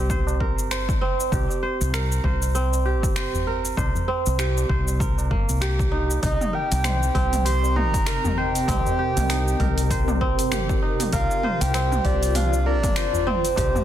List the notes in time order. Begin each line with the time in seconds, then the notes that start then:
Already playing: C2 C4 G4 A#4
0.10 C5, kick, shaker
0.27 tabla na, shaker
0.40 A#4, kick
0.58 G1, shaker
0.71 C5, finger snap, shaker
0.88 kick, tabla tin, shaker
1.01 C4
1.20 tabla tin, shaker
1.32 C2 G4, kick, tabla na, shaker
1.50 tabla na, tabla tin, shaker
1.63 C5
1.81 C2, shaker
1.94 A#4, finger snap, shaker
2.12 shaker
2.24 C2 C5, kick
2.42 tabla tin, shaker
2.55 C4, shaker
2.73 tabla tin, shaker
2.85 G4
3.03 G1, kick, shaker
3.16 C5, finger snap, shaker
3.34 tabla ge, shaker
3.47 A#4, tabla tin
3.65 shaker
3.77 C2 C5, kick, tabla na, shaker
3.95 tabla na, tabla tin, tabla ge, shaker
4.08 C4
4.26 C2, shaker
4.39 G4, finger snap, shaker
4.57 tabla na, shaker
4.69 C2 C5, kick
4.88 tabla tin, shaker
5.00 A#4, kick, shaker
5.18 tabla na, shaker
5.31 G1 A#3, kick
5.49 C2, shaker
5.61 G4, finger snap, shaker
5.79 kick, tabla tin, shaker
5.92 D#4
6.11 tabla tin, shaker
6.23 C2 C3 D#4 D#5, kick, open hi-hat, tabla na, shaker
6.34 C4
6.41 mid tom, tabla na, tabla tin, shaker
6.53 G4 A#4 G5
6.62 A#4
6.71 C2, open hi-hat, shaker
6.84 C5, finger snap, mid tom, open hi-hat, shaker
7.03 shaker
7.15 C2 C4, kick, open hi-hat
7.33 mid tom, open hi-hat, tabla tin, shaker
7.44 G4 D#5 C6, open hi-hat, shaker
7.63 tabla tin, shaker
7.76 D#4 A#5, mid tom
7.94 G1, kick, open hi-hat, shaker
8.06 A#4, finger snap, open hi-hat, shaker
8.25 mid tom, tabla ge, shaker
8.31 A#5
8.37 C5 G5, tabla tin
8.55 open hi-hat, shaker
8.67 C2 C4, kick, mid tom, open hi-hat, tabla na, shaker
8.87 tabla tin, tabla ge, shaker
8.99 G4
9.17 C2, mid tom, open hi-hat, shaker
9.30 D#4, finger snap, open hi-hat, shaker
9.48 shaker
9.60 C2 A#4, kick, mid tom, open hi-hat
9.78 open hi-hat, tabla tin, shaker
9.90 C5, kick, open hi-hat, shaker
10.08 mid tom, tabla na, shaker
10.21 C4, kick
10.39 G1, open hi-hat, shaker
10.52 G4, finger snap, mid tom, open hi-hat, shaker
10.69 kick, tabla tin, shaker
10.82 D#4
11.00 mid tom, open hi-hat, tabla tin, shaker
11.12 C2 A#4 F5, kick, open hi-hat, tabla na, shaker
11.31 tabla na, tabla tin, shaker
11.43 F4 C5, mid tom
11.61 C2 G5, open hi-hat, shaker
11.74 C4, finger snap, open hi-hat, shaker
11.92 mid tom, shaker
12.04 C2 G4 D5, kick, open hi-hat
12.13 D5
12.23 open hi-hat, tabla tin, shaker
12.35 D4 F5, mid tom, open hi-hat, shaker
12.53 tabla tin, shaker
12.65 A#4 D5, tabla tin
12.83 G1, kick, mid tom, open hi-hat, shaker
12.96 C5, finger snap, open hi-hat, shaker
13.13 tabla ge, shaker
13.26 C4 C5, mid tom, tabla tin
13.45 open hi-hat, shaker
13.56 C2 G4, kick, open hi-hat, tabla na, shaker
13.74 mid tom, tabla na, tabla tin, tabla ge, shaker